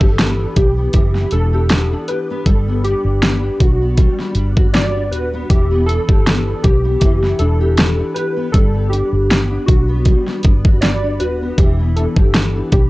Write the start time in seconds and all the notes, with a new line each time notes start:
Already playing: E3 B3 D4 A4
0.01 G1 G4, kick
0.18 B3, snare, closed hi-hat
0.39 D4
0.56 B1 G4, kick, closed hi-hat
0.77 B3
0.93 F#1 E3 G4, kick, closed hi-hat
1.15 B3, snare
1.31 E1 D4 A4, closed hi-hat
1.53 G4
1.69 B3, snare, closed hi-hat
1.92 D4
2.08 G4 B4, closed hi-hat
2.30 B3
2.46 G1 G3 A4, kick, closed hi-hat
2.68 B3
2.84 D4 G4, closed hi-hat
3.05 G1
3.23 B3, snare, closed hi-hat
3.43 D4
3.60 B1 F#4, kick, closed hi-hat
3.81 B3
3.97 G3, kick, closed hi-hat
4.19 B3, snare
4.35 G1 D4, closed hi-hat
4.57 F#4, kick
4.73 B3 D5, snare, closed hi-hat
4.96 D4
5.11 D#1 F#4 B4, closed hi-hat
5.33 B3
5.50 E1 E3 G4, kick, closed hi-hat
5.71 B3
5.86 D4 A4, closed hi-hat
6.08 G1 G4, kick
6.26 B3, snare, closed hi-hat
6.47 D4
6.63 B1 G4, kick, closed hi-hat
6.84 B3
7.00 F#1 E3 G4, kick, closed hi-hat
7.22 B3, snare
7.39 E1 D4 A4, closed hi-hat
7.61 G4
7.77 B3, snare, closed hi-hat
7.99 D4
8.14 G4 B4, closed hi-hat
8.36 B3
8.52 G1 G3 A4, kick, closed hi-hat
8.74 B3
8.89 D4 G4, closed hi-hat
9.13 G1
9.29 B3, snare, closed hi-hat
9.50 D4
9.66 B1 F#4, kick, closed hi-hat
9.88 B3
10.05 G3, kick, closed hi-hat
10.27 B3, snare
10.43 G1 D4, kick, closed hi-hat
10.65 F#4, kick
10.81 B3 D5, snare, closed hi-hat
11.03 D4
11.20 D#1 F#4 B4, closed hi-hat
11.41 B3
11.58 E1 E3 G4, kick, closed hi-hat
11.79 B3
11.96 D4 A4, closed hi-hat
12.16 G1 G4, kick
12.34 B3, snare, closed hi-hat
12.56 D4
12.72 B1 G4, kick, closed hi-hat